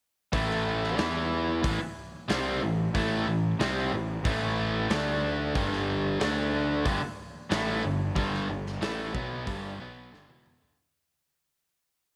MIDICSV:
0, 0, Header, 1, 6, 480
1, 0, Start_track
1, 0, Tempo, 652884
1, 243, Time_signature, 4, 2, 24, 8
1, 8937, End_track
2, 0, Start_track
2, 0, Title_t, "Overdriven electric guitar"
2, 0, Program_c, 0, 29
2, 238, Note_on_c, 0, 45, 97
2, 243, Note_on_c, 0, 52, 94
2, 245, Note_on_c, 0, 57, 97
2, 711, Note_off_c, 0, 52, 0
2, 714, Note_off_c, 0, 45, 0
2, 717, Note_off_c, 0, 57, 0
2, 720, Note_on_c, 0, 52, 93
2, 726, Note_on_c, 0, 59, 88
2, 727, Note_on_c, 0, 64, 102
2, 1195, Note_off_c, 0, 52, 0
2, 1198, Note_off_c, 0, 59, 0
2, 1198, Note_off_c, 0, 64, 0
2, 1199, Note_on_c, 0, 45, 93
2, 1203, Note_on_c, 0, 52, 110
2, 1314, Note_off_c, 0, 45, 0
2, 1316, Note_off_c, 0, 52, 0
2, 1689, Note_on_c, 0, 48, 85
2, 1692, Note_on_c, 0, 55, 85
2, 1699, Note_on_c, 0, 60, 84
2, 1919, Note_off_c, 0, 48, 0
2, 1920, Note_off_c, 0, 55, 0
2, 1924, Note_off_c, 0, 60, 0
2, 1930, Note_on_c, 0, 52, 75
2, 1933, Note_on_c, 0, 45, 62
2, 2118, Note_off_c, 0, 52, 0
2, 2120, Note_off_c, 0, 45, 0
2, 2166, Note_on_c, 0, 45, 90
2, 2170, Note_on_c, 0, 52, 103
2, 2176, Note_on_c, 0, 57, 109
2, 2396, Note_off_c, 0, 45, 0
2, 2397, Note_off_c, 0, 52, 0
2, 2401, Note_off_c, 0, 57, 0
2, 2406, Note_on_c, 0, 45, 66
2, 2406, Note_on_c, 0, 52, 70
2, 2595, Note_off_c, 0, 52, 0
2, 2596, Note_off_c, 0, 45, 0
2, 2643, Note_on_c, 0, 48, 93
2, 2647, Note_on_c, 0, 55, 97
2, 2651, Note_on_c, 0, 60, 103
2, 2873, Note_off_c, 0, 48, 0
2, 2876, Note_off_c, 0, 55, 0
2, 2876, Note_on_c, 0, 45, 59
2, 2879, Note_off_c, 0, 60, 0
2, 2880, Note_on_c, 0, 52, 65
2, 3070, Note_off_c, 0, 45, 0
2, 3072, Note_off_c, 0, 52, 0
2, 3121, Note_on_c, 0, 45, 87
2, 3127, Note_on_c, 0, 52, 98
2, 3128, Note_on_c, 0, 57, 104
2, 3591, Note_off_c, 0, 57, 0
2, 3592, Note_off_c, 0, 45, 0
2, 3595, Note_off_c, 0, 52, 0
2, 3598, Note_on_c, 0, 50, 88
2, 3600, Note_on_c, 0, 57, 97
2, 3607, Note_on_c, 0, 62, 85
2, 4070, Note_off_c, 0, 50, 0
2, 4071, Note_off_c, 0, 57, 0
2, 4074, Note_off_c, 0, 62, 0
2, 4075, Note_on_c, 0, 43, 84
2, 4078, Note_on_c, 0, 50, 101
2, 4082, Note_on_c, 0, 55, 109
2, 4543, Note_off_c, 0, 50, 0
2, 4548, Note_off_c, 0, 43, 0
2, 4552, Note_off_c, 0, 55, 0
2, 4552, Note_on_c, 0, 50, 93
2, 4558, Note_on_c, 0, 57, 101
2, 4560, Note_on_c, 0, 62, 105
2, 5027, Note_off_c, 0, 50, 0
2, 5029, Note_off_c, 0, 57, 0
2, 5030, Note_off_c, 0, 62, 0
2, 5033, Note_on_c, 0, 43, 95
2, 5040, Note_on_c, 0, 50, 101
2, 5147, Note_off_c, 0, 43, 0
2, 5151, Note_off_c, 0, 50, 0
2, 5512, Note_on_c, 0, 45, 77
2, 5514, Note_on_c, 0, 52, 95
2, 5519, Note_on_c, 0, 57, 90
2, 5747, Note_off_c, 0, 45, 0
2, 5748, Note_off_c, 0, 52, 0
2, 5750, Note_off_c, 0, 57, 0
2, 5757, Note_on_c, 0, 43, 73
2, 5762, Note_on_c, 0, 50, 68
2, 5948, Note_off_c, 0, 43, 0
2, 5951, Note_off_c, 0, 50, 0
2, 5995, Note_on_c, 0, 50, 97
2, 5996, Note_on_c, 0, 43, 99
2, 6000, Note_on_c, 0, 55, 117
2, 6229, Note_off_c, 0, 43, 0
2, 6229, Note_off_c, 0, 50, 0
2, 6231, Note_off_c, 0, 55, 0
2, 6239, Note_on_c, 0, 43, 66
2, 6241, Note_on_c, 0, 50, 69
2, 6430, Note_off_c, 0, 43, 0
2, 6431, Note_off_c, 0, 50, 0
2, 6478, Note_on_c, 0, 45, 91
2, 6480, Note_on_c, 0, 52, 94
2, 6484, Note_on_c, 0, 57, 109
2, 6710, Note_off_c, 0, 45, 0
2, 6712, Note_off_c, 0, 52, 0
2, 6714, Note_off_c, 0, 57, 0
2, 6715, Note_on_c, 0, 47, 93
2, 6716, Note_on_c, 0, 54, 98
2, 6720, Note_on_c, 0, 59, 96
2, 6949, Note_off_c, 0, 47, 0
2, 6950, Note_off_c, 0, 54, 0
2, 6952, Note_off_c, 0, 59, 0
2, 6957, Note_on_c, 0, 43, 93
2, 6959, Note_on_c, 0, 50, 103
2, 6963, Note_on_c, 0, 55, 98
2, 7185, Note_off_c, 0, 50, 0
2, 7188, Note_on_c, 0, 47, 84
2, 7191, Note_off_c, 0, 43, 0
2, 7191, Note_off_c, 0, 55, 0
2, 7194, Note_on_c, 0, 54, 91
2, 7197, Note_on_c, 0, 59, 96
2, 7424, Note_on_c, 0, 43, 81
2, 7427, Note_off_c, 0, 47, 0
2, 7430, Note_off_c, 0, 54, 0
2, 7432, Note_off_c, 0, 59, 0
2, 7432, Note_on_c, 0, 50, 82
2, 7540, Note_off_c, 0, 43, 0
2, 7543, Note_on_c, 0, 40, 87
2, 7546, Note_off_c, 0, 50, 0
2, 7549, Note_on_c, 0, 47, 87
2, 7550, Note_on_c, 0, 52, 86
2, 7785, Note_off_c, 0, 40, 0
2, 7788, Note_off_c, 0, 47, 0
2, 7788, Note_on_c, 0, 43, 88
2, 7789, Note_off_c, 0, 52, 0
2, 7794, Note_on_c, 0, 50, 92
2, 7908, Note_off_c, 0, 43, 0
2, 7911, Note_off_c, 0, 50, 0
2, 8937, End_track
3, 0, Start_track
3, 0, Title_t, "Picked electric bass"
3, 0, Program_c, 1, 34
3, 248, Note_on_c, 1, 33, 84
3, 697, Note_off_c, 1, 33, 0
3, 726, Note_on_c, 1, 40, 90
3, 1176, Note_off_c, 1, 40, 0
3, 1209, Note_on_c, 1, 33, 85
3, 1318, Note_off_c, 1, 33, 0
3, 1693, Note_on_c, 1, 36, 86
3, 1912, Note_off_c, 1, 36, 0
3, 1939, Note_on_c, 1, 33, 73
3, 2154, Note_off_c, 1, 33, 0
3, 2169, Note_on_c, 1, 33, 90
3, 2389, Note_off_c, 1, 33, 0
3, 2415, Note_on_c, 1, 33, 78
3, 2631, Note_off_c, 1, 33, 0
3, 2646, Note_on_c, 1, 36, 85
3, 2867, Note_off_c, 1, 36, 0
3, 2897, Note_on_c, 1, 33, 76
3, 3112, Note_off_c, 1, 33, 0
3, 3125, Note_on_c, 1, 33, 88
3, 3572, Note_off_c, 1, 33, 0
3, 3605, Note_on_c, 1, 38, 89
3, 4051, Note_off_c, 1, 38, 0
3, 4085, Note_on_c, 1, 31, 88
3, 4531, Note_off_c, 1, 31, 0
3, 4572, Note_on_c, 1, 38, 91
3, 5014, Note_off_c, 1, 38, 0
3, 5040, Note_on_c, 1, 31, 89
3, 5150, Note_off_c, 1, 31, 0
3, 5525, Note_on_c, 1, 33, 90
3, 5744, Note_off_c, 1, 33, 0
3, 5772, Note_on_c, 1, 31, 79
3, 5988, Note_off_c, 1, 31, 0
3, 6005, Note_on_c, 1, 31, 89
3, 6224, Note_off_c, 1, 31, 0
3, 6245, Note_on_c, 1, 31, 78
3, 6464, Note_off_c, 1, 31, 0
3, 6481, Note_on_c, 1, 33, 92
3, 6703, Note_off_c, 1, 33, 0
3, 6727, Note_on_c, 1, 35, 97
3, 6946, Note_off_c, 1, 35, 0
3, 6969, Note_on_c, 1, 31, 86
3, 7188, Note_off_c, 1, 31, 0
3, 7205, Note_on_c, 1, 35, 93
3, 7426, Note_off_c, 1, 35, 0
3, 7448, Note_on_c, 1, 31, 96
3, 7556, Note_off_c, 1, 31, 0
3, 7564, Note_on_c, 1, 28, 83
3, 7786, Note_off_c, 1, 28, 0
3, 7810, Note_on_c, 1, 31, 100
3, 7918, Note_off_c, 1, 31, 0
3, 8937, End_track
4, 0, Start_track
4, 0, Title_t, "Muted overdriven electric guitar strokes"
4, 1326, Note_on_c, 9, 29, 62
4, 1400, Note_off_c, 9, 29, 0
4, 5156, Note_on_c, 9, 29, 58
4, 5229, Note_off_c, 9, 29, 0
4, 8937, End_track
5, 0, Start_track
5, 0, Title_t, "Muted picked electric bass strokes"
5, 1332, Note_on_c, 9, 29, 40
5, 1405, Note_off_c, 9, 29, 0
5, 5170, Note_on_c, 9, 29, 44
5, 5244, Note_off_c, 9, 29, 0
5, 8937, End_track
6, 0, Start_track
6, 0, Title_t, "Drums"
6, 244, Note_on_c, 9, 36, 92
6, 247, Note_on_c, 9, 46, 51
6, 317, Note_off_c, 9, 36, 0
6, 320, Note_off_c, 9, 46, 0
6, 373, Note_on_c, 9, 38, 34
6, 446, Note_off_c, 9, 38, 0
6, 615, Note_on_c, 9, 38, 30
6, 688, Note_off_c, 9, 38, 0
6, 722, Note_on_c, 9, 46, 54
6, 728, Note_on_c, 9, 38, 112
6, 796, Note_off_c, 9, 46, 0
6, 802, Note_off_c, 9, 38, 0
6, 1207, Note_on_c, 9, 36, 108
6, 1208, Note_on_c, 9, 46, 61
6, 1280, Note_off_c, 9, 36, 0
6, 1281, Note_off_c, 9, 46, 0
6, 1687, Note_on_c, 9, 46, 59
6, 1693, Note_on_c, 9, 38, 103
6, 1760, Note_off_c, 9, 46, 0
6, 1766, Note_off_c, 9, 38, 0
6, 2167, Note_on_c, 9, 36, 88
6, 2171, Note_on_c, 9, 46, 53
6, 2241, Note_off_c, 9, 36, 0
6, 2244, Note_off_c, 9, 46, 0
6, 2648, Note_on_c, 9, 46, 55
6, 2654, Note_on_c, 9, 38, 104
6, 2721, Note_off_c, 9, 46, 0
6, 2727, Note_off_c, 9, 38, 0
6, 3125, Note_on_c, 9, 36, 111
6, 3128, Note_on_c, 9, 46, 56
6, 3199, Note_off_c, 9, 36, 0
6, 3201, Note_off_c, 9, 46, 0
6, 3604, Note_on_c, 9, 46, 53
6, 3609, Note_on_c, 9, 38, 110
6, 3677, Note_off_c, 9, 46, 0
6, 3683, Note_off_c, 9, 38, 0
6, 4083, Note_on_c, 9, 36, 94
6, 4085, Note_on_c, 9, 46, 51
6, 4156, Note_off_c, 9, 36, 0
6, 4158, Note_off_c, 9, 46, 0
6, 4210, Note_on_c, 9, 38, 33
6, 4283, Note_off_c, 9, 38, 0
6, 4561, Note_on_c, 9, 46, 57
6, 4567, Note_on_c, 9, 38, 105
6, 4635, Note_off_c, 9, 46, 0
6, 4641, Note_off_c, 9, 38, 0
6, 5039, Note_on_c, 9, 46, 57
6, 5040, Note_on_c, 9, 36, 104
6, 5113, Note_off_c, 9, 46, 0
6, 5114, Note_off_c, 9, 36, 0
6, 5522, Note_on_c, 9, 46, 62
6, 5528, Note_on_c, 9, 38, 111
6, 5595, Note_off_c, 9, 46, 0
6, 5601, Note_off_c, 9, 38, 0
6, 6001, Note_on_c, 9, 36, 93
6, 6007, Note_on_c, 9, 46, 50
6, 6075, Note_off_c, 9, 36, 0
6, 6080, Note_off_c, 9, 46, 0
6, 6132, Note_on_c, 9, 38, 36
6, 6206, Note_off_c, 9, 38, 0
6, 6370, Note_on_c, 9, 38, 32
6, 6444, Note_off_c, 9, 38, 0
6, 6484, Note_on_c, 9, 46, 61
6, 6490, Note_on_c, 9, 38, 111
6, 6558, Note_off_c, 9, 46, 0
6, 6564, Note_off_c, 9, 38, 0
6, 6724, Note_on_c, 9, 36, 103
6, 6797, Note_off_c, 9, 36, 0
6, 6963, Note_on_c, 9, 36, 109
6, 6965, Note_on_c, 9, 46, 57
6, 7037, Note_off_c, 9, 36, 0
6, 7039, Note_off_c, 9, 46, 0
6, 7454, Note_on_c, 9, 38, 62
6, 7527, Note_off_c, 9, 38, 0
6, 7569, Note_on_c, 9, 48, 69
6, 7642, Note_off_c, 9, 48, 0
6, 7688, Note_on_c, 9, 45, 81
6, 7762, Note_off_c, 9, 45, 0
6, 7810, Note_on_c, 9, 43, 87
6, 7884, Note_off_c, 9, 43, 0
6, 8937, End_track
0, 0, End_of_file